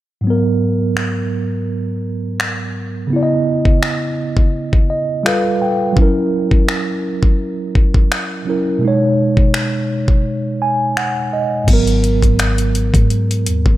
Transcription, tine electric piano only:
0.21 3.05 G#2 medium
0.21 3.06 F#3 medium
0.27 3.08 B3 medium
0.27 3.09 A#4 medium
3.07 5.19 C#3 medium
3.07 5.21 B3 medium
3.13 5.22 E4 medium
3.13 3.21 D5 medium
3.23 4.89 D#5 medium
4.90 5.23 D#5 medium
5.23 5.96 G3 medium
5.23 5.96 F4 medium
5.23 5.97 A4 medium
5.23 5.59 F5 medium
5.28 5.98 B4 medium
5.62 5.94 G5 medium
5.93 8.41 F#3 medium
5.93 8.42 C#4 medium
5.99 8.44 E4 medium
5.99 8.45 A#4 medium
8.45 8.82 F#3 medium
8.45 8.82 C#4 soft
8.45 8.83 E4 soft
8.50 8.84 A#4 medium
8.79 11.62 B2 medium
8.79 11.64 G#3 medium
8.85 11.65 D#4 medium
8.85 11.67 C#5 medium
10.62 10.95 G#5 medium
10.97 11.30 F#5 medium
11.33 11.66 D#5 medium
11.64 13.76 G#2 medium
11.64 13.77 F#3 medium
11.70 13.77 B3 medium
11.70 13.77 A#4 medium

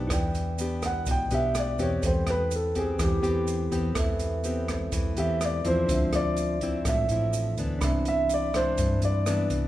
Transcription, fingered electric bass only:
0.11 1.03 E2 medium
1.07 1.29 B1 medium
1.31 1.76 B1 medium
1.79 2.02 E2 medium
2.03 2.96 E2 medium
3.00 3.22 E2 medium
3.24 3.69 E2 medium
3.72 3.94 E2 medium
3.96 4.88 E2 medium
4.92 5.15 E2 medium
5.17 5.62 E2 medium
5.65 5.87 E2 medium
5.89 6.81 D2 medium
6.85 7.08 A1 medium
7.10 7.54 A1 medium
7.57 7.80 D2 medium
7.82 8.74 C2 medium
8.78 9.00 G2 medium
9.02 9.47 G2 medium
9.50 9.68 C2 medium

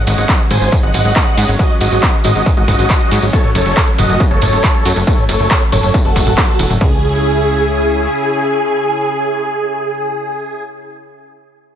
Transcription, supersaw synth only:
0.07 0.42 D#5 medium
0.07 0.42 F#5 loud
0.51 0.77 C5 medium
0.51 0.77 G#5 loud
0.83 1.51 D#5 medium
0.83 1.51 F#5 loud
1.59 1.77 F#4 medium
1.59 1.77 D#5 loud
1.81 2.16 F#4 medium
1.81 2.16 D#5 loud
2.24 2.51 F#4 medium
2.24 2.51 D#5 loud
2.57 3.25 F#4 medium
2.57 3.25 D#5 loud
3.33 3.50 A4 medium
3.33 3.51 C#5 loud
3.55 3.90 A4 medium
3.55 3.90 C#5 loud
3.98 4.24 F#4 medium
3.98 4.24 D#5 medium
4.31 4.98 A4 medium
4.31 4.98 C#5 loud
5.07 5.25 A4 medium
5.07 5.25 C#5 loud
5.29 5.64 A4 medium
5.29 5.64 C#5 loud
5.72 5.98 A4 medium
5.72 5.98 C#5 loud
6.05 6.72 F#4 medium
6.05 6.72 A4 loud
6.81 10.63 G#4 loud

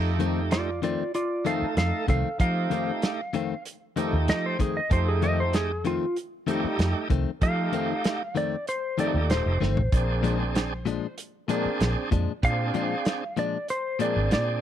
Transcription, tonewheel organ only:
0.00 0.70 A3 medium
0.00 0.70 D#4 medium
0.00 0.71 G4 medium
1.45 2.06 A3 medium
1.45 2.06 D#4 medium
1.45 2.07 A4 medium
2.39 3.21 A3 medium
2.39 3.21 D#4 medium
2.39 3.21 G4 medium
3.96 4.57 A3 medium
3.96 4.57 D#4 medium
3.96 4.58 G4 medium
4.90 5.71 A3 medium
4.90 5.72 D#4 medium
4.90 5.72 G4 medium
6.47 7.08 A3 medium
6.47 7.08 D#4 medium
6.47 7.09 G4 medium
7.41 8.22 A3 medium
7.41 8.23 D#4 medium
7.41 8.23 G4 medium
8.98 9.59 A3 medium
8.98 9.59 D#4 medium
8.98 9.59 G4 medium
9.92 10.73 C4 medium
9.92 10.74 D4 medium
9.92 10.74 G#4 medium
11.49 12.10 C4 medium
11.49 12.10 D4 medium
11.49 12.10 G#4 medium
12.42 13.24 C4 medium
12.42 13.24 D4 medium
12.42 13.24 G#4 medium
13.99 14.60 C4 medium
13.99 14.60 D4 medium
13.99 14.61 G#4 medium

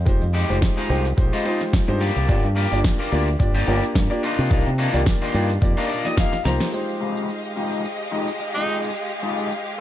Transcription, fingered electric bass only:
0.07 0.19 F1 medium
0.22 0.43 F2 medium
0.50 0.59 F1 medium
0.90 1.12 C2 medium
1.18 1.30 A#1 medium
1.88 2.10 G2 loud
2.16 2.26 C2 medium
2.29 2.41 G1 medium
2.44 2.65 G2 medium
2.72 2.82 G1 medium
3.12 3.35 D2 loud
3.40 3.62 G1 medium
3.68 3.80 G1 loud
3.95 4.07 G2 medium
4.39 4.48 C3 medium
4.51 4.63 C2 medium
4.67 4.88 C3 medium
4.94 5.04 C2 medium
5.34 5.57 G2 medium
5.62 5.74 F2 medium
6.45 6.57 C2 medium

